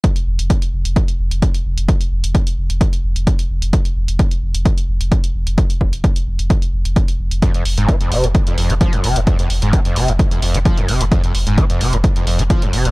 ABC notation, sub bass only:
X:1
M:4/4
L:1/16
Q:1/4=130
K:Fm
V:1 name="Sub bass" clef=bass
z2 F,,, F,,, z2 F,,, F,,, z2 F,,, F,,, z2 F,,, F,,, | z2 F,,, F,,, z2 F,,, F,,, z2 F,,, F,,, z2 F,,, F,,, | z2 F,,, F,,, z2 F,,, F,,, z2 F,,, F,,, z2 F,,, F,,, | z2 F,,, F,,, z2 F,,, F,,, z2 F,,, F,,, z2 F,,, F,,, |
z2 F,,, F,,, z2 F,,, F,,, z2 F,,, F,,, z2 F,,, F,,, | z2 F,,, F,,, z2 F,,, F,,, z2 F,,, F,,, z2 F,,, F,,, | z2 F,,, F,,, z2 F,,, F,,, z2 F,,, F,,, z2 F,,, F,,, |]